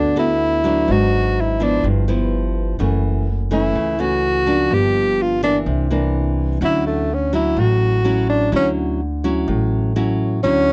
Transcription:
Already playing: upright bass D2, nylon-string guitar D3 B3 F#4 A4, tenor saxophone D4
0.16 nylon-string guitar B3 F#4 A4, tenor saxophone E4
0.64 nylon-string guitar F#3 B3 D4
0.88 upright bass G#1, nylon-string guitar G#2
0.92 tenor saxophone F#4
1.41 tenor saxophone E4
1.60 nylon-string guitar F3 B3 E4, tenor saxophone D4
1.84 upright bass G1, nylon-string guitar G2
2.08 nylon-string guitar F3 B3 E4
2.79 upright bass F#1, nylon-string guitar F#2 E3 A3 C#4
3.51 nylon-string guitar E3 A3 C#4, tenor saxophone E4
3.75 upright bass C#2, nylon-string guitar C#3
3.99 nylon-string guitar E3 A3 C#4, tenor saxophone F#4
4.46 nylon-string guitar F3 A#3 D4
4.71 upright bass G1, nylon-string guitar G2, tenor saxophone G4
5.22 tenor saxophone F4
5.43 nylon-string guitar E3 A#3 D4, tenor saxophone D4
5.66 upright bass C2, nylon-string guitar C3
5.91 nylon-string guitar E3 A#3 D4
6.61 upright bass D2, nylon-string guitar D3 F#3 C#4 E4
6.65 tenor saxophone E4
6.87 tenor saxophone A3
7.14 tenor saxophone C#4
7.33 nylon-string guitar F#3 C#4 E4, tenor saxophone E4
7.56 upright bass A1, nylon-string guitar A2, tenor saxophone F#4
8.05 nylon-string guitar F#3 C#4 E4
8.30 tenor saxophone D4
8.52 upright bass D2, nylon-string guitar D3 F#3 C#4 E4
8.56 tenor saxophone C#4
9.24 nylon-string guitar F#3 C#4 E4
9.48 upright bass A1, nylon-string guitar A2
9.96 nylon-string guitar F#3 C#4 E4
10.43 upright bass D2, nylon-string guitar D3 F#3 C#4 E4, tenor saxophone C#4

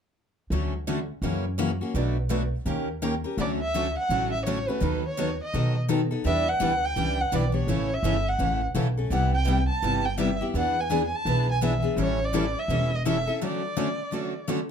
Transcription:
0.50 upright bass D2, steel-string acoustic guitar D3 F#3 A3 C#4 F#4 A4
0.87 steel-string acoustic guitar D3 F#3 A3 C#4 F#4 A4
1.22 upright bass F#2, steel-string acoustic guitar C#3 E3 F#3 A#3 C#4 E4 F#4 A#4
1.58 steel-string acoustic guitar C#3 E3 F#3 A#3 C#4 E4 F#4 A#4
1.81 steel-string acoustic guitar A#3 C#4 F#4
1.94 upright bass B1, steel-string acoustic guitar B2 F#3 A3 D4 F#4 B4
2.30 steel-string acoustic guitar B2 F#3 A3 D4 F#4 B4
2.65 upright bass D#2, steel-string acoustic guitar D#3 A#3 C#4 G4 A#4
3.02 steel-string acoustic guitar D#3 A#3 C#4 G4 A#4
3.24 steel-string acoustic guitar C#4 G4 A#4
3.37 upright bass D2, steel-string acoustic guitar D3 F#3 A3 C#4 F#4 A4, violin D5
3.62 violin E5
3.74 steel-string acoustic guitar D3 F#3 A3 C#4 F#4 A4
3.99 violin F#5
4.09 upright bass A1, steel-string acoustic guitar D3 F#3 A3 C#4 F#4 A4
4.32 violin E5
4.45 steel-string acoustic guitar D3 F#3 A3 C#4 F#4 A4, violin C#5
4.68 steel-string acoustic guitar A3 C#4 F#4, violin B4
4.80 upright bass D#2, steel-string acoustic guitar D#3 F#3 B3 D#4 A4
5.08 violin C#5
5.18 steel-string acoustic guitar D#3 F#3 B3 D#4 A4
5.44 violin D#5
5.54 upright bass B2, steel-string acoustic guitar D#3 F#3 B3 D#4 A4
5.88 steel-string acoustic guitar D#3 F#3 B3 D#4 A4
6.11 steel-string acoustic guitar B3 D#4 A4
6.24 upright bass E2, steel-string acoustic guitar E3 G3 B3 D4 E4 G4 B4, violin E5
6.48 violin F#5
6.60 upright bass D2, steel-string acoustic guitar E3 G3 B3 D4 E4 G4 B4
6.85 violin G5
6.96 upright bass C#2, steel-string acoustic guitar E3 G3 B3 D4 E4 G4 B4
7.20 violin F#5
7.32 upright bass B1, steel-string acoustic guitar E3 G3 B3 D4 E4 G4 B4, violin D5
7.52 steel-string acoustic guitar B3 D4 G4
7.56 violin C#5
7.67 upright bass A1, steel-string acoustic guitar C#3 E3 A3 C#4 E4 A4
7.94 violin E5
8.03 upright bass G1, steel-string acoustic guitar C#3 E3 A3 C#4 E4 A4
8.28 violin F#5
8.39 upright bass A1, steel-string acoustic guitar C#3 E3 A3 C#4 E4 A4
8.75 upright bass B1, steel-string acoustic guitar C#3 E3 A3 C#4 E4 A4
8.97 steel-string acoustic guitar A3 C#4 A4
9.10 upright bass C2, steel-string acoustic guitar C3 G3 B3 E4 G4, violin F#5
9.34 violin G5
9.47 steel-string acoustic guitar C3 G3 B3 E4 G4
9.69 violin A5
9.82 upright bass G1, steel-string acoustic guitar C3 G3 B3 E4 G4
10.05 violin G5
10.18 steel-string acoustic guitar C3 G3 B3 E4 G4, violin E5
10.41 steel-string acoustic guitar B3 E4 G4
10.54 upright bass E2, steel-string acoustic guitar E3 B3 D4 G#4 B4
10.58 violin F#5
10.80 violin G#5
10.90 steel-string acoustic guitar E3 B3 D4 G#4 B4
11.07 violin G#5
11.15 violin A5
11.25 upright bass B1, steel-string acoustic guitar E3 B3 D4 G#4 B4
11.51 violin G#5
11.61 steel-string acoustic guitar E3 B3 D4 G#4 B4, violin E5
11.82 steel-string acoustic guitar B3 D4 G#4
11.96 upright bass A1, steel-string acoustic guitar E3 G3 C#4 E4 A4
12.02 violin C#5
12.25 violin D5
12.33 steel-string acoustic guitar E3 G3 C#4 E4 A4
12.59 violin E5
12.68 upright bass E1, steel-string acoustic guitar E3 G3 C#4 E4 A4
12.95 violin D#5
13.05 steel-string acoustic guitar E3 G3 C#4 E4 A4, violin E5
13.27 steel-string acoustic guitar C#4 E4 A4
13.42 steel-string acoustic guitar D3 F#3 A3 C#4 F#4 A4
13.46 violin D5
13.77 steel-string acoustic guitar D3 F#3 A3 C#4 F#4 A4
14.11 steel-string acoustic guitar D3 F#3 A3 C#4 F#4 A4
14.48 steel-string acoustic guitar D3 F#3 A3 C#4 F#4 A4

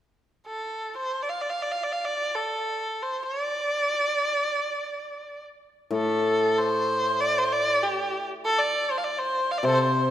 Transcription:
0.47 erhu A4
0.97 erhu C5
1.23 erhu D5
1.29 erhu F5
1.41 erhu D5
1.50 erhu F5
1.62 erhu D5
1.72 erhu F5
1.83 erhu D5
1.92 erhu F5
2.05 erhu D5
2.35 erhu A4
3.03 erhu C5
3.23 erhu C#5
3.42 erhu D5
5.91 hammered dulcimer A2
5.95 erhu A4
6.58 erhu C5
7.21 erhu D5
7.38 erhu C5
7.53 erhu D5
7.83 erhu G4
8.45 erhu A4
8.59 erhu D5
8.91 erhu C5
8.98 erhu F5
9.04 erhu D5
9.19 erhu C5
9.52 erhu F5
9.58 erhu D5
9.63 hammered dulcimer C3, erhu C5
9.68 erhu A4
9.74 erhu C5
9.83 erhu C5

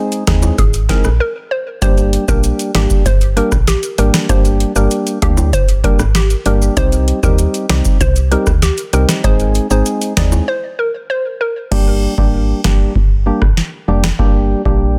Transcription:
Already playing: synth stab G#3 C4 D#4 G#4
0.12 closed hi-hat, maracas
0.27 fm bass D#2, synth stab G#3 C4 D#4 G#4, synth pluck G#4, kick, cross-stick, snare, closed hi-hat, maracas
0.42 high timbale, maracas
0.58 fm bass G#1, synth pluck G#4, kick, closed hi-hat, maracas
0.73 closed hi-hat, maracas
0.89 synth stab G#3 C4 D#4 G#4, synth pluck A#4, kick, snare, closed hi-hat, high timbale, maracas
1.04 fm bass A#1, cross-stick, maracas
1.20 synth pluck A#4
1.51 synth pluck C5
1.82 fm bass G1, synth stab G3 A#3 D4 G4, synth pluck C5, kick, closed hi-hat, maracas
1.97 closed hi-hat, maracas
2.13 closed hi-hat
2.28 fm bass A#1, synth stab G3 A#3 D4 G4, synth pluck A#4, kick, maracas
2.44 closed hi-hat, maracas
2.59 closed hi-hat, maracas
2.75 fm bass G#1, synth stab G3 A#3 D4 G4, synth pluck G4, cross-stick, snare, closed hi-hat
2.90 kick, maracas
3.06 fm bass G1, synth pluck C5, kick, closed hi-hat, maracas
3.21 closed hi-hat, maracas
3.36 synth stab G3 A#3 D4 G4, synth pluck A#4, closed hi-hat
3.52 fm bass A#1, kick, cross-stick, maracas
3.67 synth pluck G4, snare, closed hi-hat, maracas
3.83 closed hi-hat, maracas
3.98 fm bass G#1, synth stab G3 A#3 D4 G4, synth pluck A#4, closed hi-hat, maracas
4.14 cross-stick, snare, maracas
4.29 fm bass G1, synth stab G3 A#3 D4 G4, synth pluck C5, kick, closed hi-hat, maracas
4.45 closed hi-hat, maracas
4.60 closed hi-hat
4.76 fm bass G1, synth stab G3 A#3 D4 G4, synth pluck A#4, maracas
4.91 closed hi-hat, maracas
5.07 closed hi-hat, maracas
5.22 fm bass D2, synth stab G3 A#3 D4 G4, synth pluck G4, kick, closed hi-hat
5.37 high timbale, maracas
5.53 fm bass G1, synth pluck C5, kick, closed hi-hat, maracas
5.68 closed hi-hat, maracas
5.84 synth stab G3 A#3 D4 G4, synth pluck A#4, kick, closed hi-hat
5.99 fm bass G#1, cross-stick, maracas
6.15 synth pluck G4, cross-stick, snare, closed hi-hat, maracas
6.30 closed hi-hat, maracas
6.46 fm bass G1, synth stab G3 A#3 D4 G4, synth pluck A#4, closed hi-hat, maracas
6.62 maracas
6.77 fm bass C2, synth stab G3 C4 D#4 G4, synth pluck C5, kick, closed hi-hat, maracas
6.92 closed hi-hat, maracas
7.08 closed hi-hat
7.23 fm bass D#2, synth stab G3 C4 D#4 G4, synth pluck A#4, kick, maracas
7.38 closed hi-hat, maracas
7.54 closed hi-hat, maracas
7.69 fm bass C2, synth stab G3 C4 D#4 G4, synth pluck G4, cross-stick, snare, closed hi-hat
7.85 kick, maracas
8.01 fm bass C2, synth pluck C5, kick, closed hi-hat, maracas
8.16 closed hi-hat, maracas
8.31 synth stab G3 C4 D#4 G4, synth pluck A#4, closed hi-hat
8.47 fm bass D2, kick, cross-stick, maracas
8.62 synth pluck G4, snare, closed hi-hat, maracas
8.78 closed hi-hat, maracas
8.93 fm bass C2, synth stab G3 C4 D#4 G4, synth pluck A#4, closed hi-hat, maracas
9.09 cross-stick, snare, maracas
9.24 fm bass G#1, synth stab G#3 C4 D#4 G#4, synth pluck C5, kick, closed hi-hat, maracas
9.40 closed hi-hat, maracas
9.55 closed hi-hat, maracas
9.70 fm bass G#1, synth stab G#3 C4 D#4 G#4, synth pluck C5, maracas
9.86 closed hi-hat, maracas
10.02 closed hi-hat, maracas
10.17 fm bass D#2, synth stab G#3 C4 D#4 G#4, synth pluck D5, kick, cross-stick, snare, closed hi-hat, maracas
10.32 high timbale, maracas
10.48 synth pluck C5
10.79 synth pluck A#4
11.10 synth pluck C5
11.41 synth pluck A#4
11.71 fm bass G1, synth stab G3 A#3 D4 G4, kick, crash
12.18 fm bass G#1, synth stab G3 A#3 D4 G4, kick
12.64 fm bass G1, synth stab G3 A#3 D4 G4, kick, cross-stick, snare
12.96 fm bass G1, kick
13.26 synth stab G3 A#3 D4 G4
13.42 fm bass G#1, kick, cross-stick
13.57 snare
13.88 fm bass F1, synth stab G3 A#3 D4 G4
14.04 cross-stick, snare
14.19 fm bass G1, synth stab G3 A#3 D4 G4, kick
14.65 fm bass A#1, synth stab G3 A#3 D4 G4, kick

